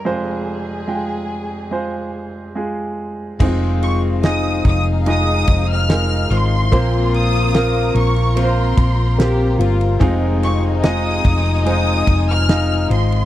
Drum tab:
CC |----------------|x---------------|----------------|----------------|
RD |----------------|--x-x-x-x-x-x-x-|x-x-x-xxx-x-x-xx|x-x-x-xxx-x-x-xx|
SD |----------------|----o-------o---|----o-------o---|----o-------o---|
BD |----------------|o-----o---o-----|o---------o-----|o-----o---o-----|